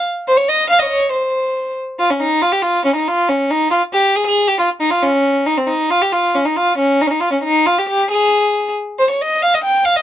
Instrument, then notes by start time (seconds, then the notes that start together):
violin
0.28 C5
0.37 C#5
0.48 D#5
0.69 F5
0.79 C#5 D#5
0.84 D#5
0.91 C#5
1.13 C5
1.99 F4
2.10 C#4
2.20 D#4
2.41 F4
2.52 G4
2.62 F4
2.85 C#4
2.96 D#4
3.08 F4
3.29 C#4
3.51 D#4
3.71 F4
3.94 G4
4.16 G#4
4.27 G#4
4.48 G4
4.59 F4
4.81 D#4
4.91 F4
5.03 C#4
5.46 D#4
5.57 C4
5.67 D#4
5.90 F4
6.02 G4
6.13 F4
6.35 C#4
6.45 D#4
6.56 F4
6.78 C#4
7.01 D#4
7.07 C#4 D#4
7.20 F4
7.33 C#4
7.44 D#4
7.66 F4
7.78 G4
7.89 G4
8.11 G#4
8.99 C5
9.10 C#5
9.21 D#5
9.42 F5
9.54 D#5
9.64 G5
9.85 F5
9.96 D#5